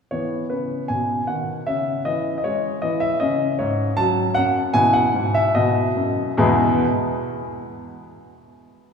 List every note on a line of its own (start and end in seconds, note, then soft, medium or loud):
0.11 0.43 E3 soft
0.11 1.64 B3 soft
0.11 0.51 C#5 medium
0.50 0.82 C#3 soft
0.50 0.85 B4 soft
0.88 1.21 B2 soft
0.88 1.28 G#5 medium
1.27 1.60 D#3 soft
1.27 1.51 F#5 medium
1.66 1.99 C#3 soft
1.66 3.16 C#4 soft
1.66 2.06 E5 medium
2.05 2.37 E3 soft
2.05 2.36 D#5 medium
2.38 2.45 D#5 medium
2.44 2.75 G#3 soft
2.44 2.82 C#5 medium
2.82 3.13 E3 soft
2.82 3.01 D#5 medium
3.00 3.20 E5 medium
3.20 3.51 C#3 medium
3.20 3.92 C#4 soft
3.20 3.54 D#5 medium
3.59 3.90 G#2 medium
3.59 3.97 C#5 medium
3.97 4.28 F#3 medium
3.97 4.71 C#4 soft
3.97 4.31 A5 medium
4.35 4.67 F#2 medium
4.35 4.58 F#5 medium
4.74 5.06 B2 medium
4.74 5.51 E4 soft
4.74 4.94 G#5 loud
4.93 5.30 F#5 medium
5.14 5.46 G#2 medium
5.34 5.55 E5 medium
5.55 5.89 B2 medium
5.55 6.35 F#4 soft
5.55 6.39 D#5 medium
5.97 6.30 F#2 medium
6.38 6.83 E2 medium
6.38 6.83 B2 medium
6.38 6.83 G#3 medium
6.38 6.84 B3 medium
6.38 6.84 E4 medium
6.38 6.84 G#4 medium
6.38 6.83 G#5 medium